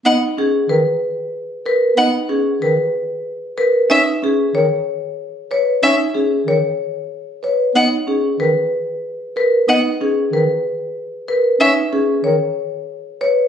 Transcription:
<<
  \new Staff \with { instrumentName = "Violin" } { \time 6/4 \key b \major \tempo 4 = 187 fis''8 r1 r4. | fis''8 r1 r4. | e''8 r1 r4. | e''8 r1 r4. |
fis''8 r1 r4. | fis''8 r1 r4. | e''8 r1 r4. | }
  \new Staff \with { instrumentName = "Marimba" } { \time 6/4 \key b \major dis''8 r8 gis'8 r8 b'8 r2 r8 b'8 r8 | dis''8 r8 gis'8 r8 b'8 r2 r8 b'8 r8 | e''8 r8 gis'8 r8 cis''8 r2 r8 cis''8 r8 | e''8 r8 gis'8 r8 cis''8 r2 r8 cis''8 r8 |
dis''8 r8 gis'8 r8 b'8 r2 r8 b'8 r8 | dis''8 r8 gis'8 r8 b'8 r2 r8 b'8 r8 | e''8 r8 gis'8 r8 cis''8 r2 r8 cis''8 r8 | }
  \new Staff \with { instrumentName = "Vibraphone" } { \time 6/4 \key b \major dis'8 r8 cis'8 r2. r8 ais'8 r8 | dis'8 r8 cis'8 r2. r8 ais'8 r8 | dis'8 r8 cis'8 r2. r8 b'8 r8 | dis'8 r8 cis'8 r2. r8 b'8 r8 |
dis'8 r8 cis'8 r2. r8 ais'8 r8 | dis'8 r8 cis'8 r2. r8 ais'8 r8 | dis'8 r8 cis'8 r2. r8 b'8 r8 | }
  \new Staff \with { instrumentName = "Bass clarinet" } { \clef bass \time 6/4 \key b \major b8 r4. dis8 r2. r8 | b8 r4. dis8 r2. r8 | cis'8 r4. dis8 r2. r8 | cis'8 r4. dis8 r2. r8 |
b8 r4. dis8 r2. r8 | b8 r4. dis8 r2. r8 | cis'8 r4. dis8 r2. r8 | }
>>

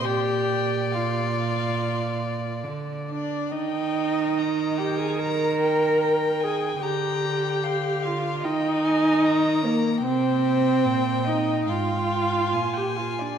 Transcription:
<<
  \new Staff \with { instrumentName = "Violin" } { \time 4/4 \key ees \major \tempo 4 = 73 d''2.~ d''8. r16 | g''4 bes''4 bes''8 g''8 g''4 | bes''4 f''4 g''8 aes''8 bes''4 | g''2 g''4 aes''4 | }
  \new Staff \with { instrumentName = "Violin" } { \time 4/4 \key ees \major g''4 f''2 r8 d''8 | ees''4. g''16 aes''16 bes''4. aes''8 | g''4. f''8 ees''4. bes'8 | c''4. ees''8 f''4~ f''16 g''16 f''16 d''16 | }
  \new Staff \with { instrumentName = "Viola" } { \time 4/4 \key ees \major g'4 f'2 r8 d'8 | ees'4. g'16 aes'16 bes'4. aes'8 | g'4. f'8 ees'4. bes8 | c'4. ees'8 f'4~ f'16 g'16 f'16 d'16 | }
  \new Staff \with { instrumentName = "Cello" } { \clef bass \time 4/4 \key ees \major bes,2. d8. r16 | ees1 | d2 ees2 | c4 bes,4 aes,4 bes,4 | }
>>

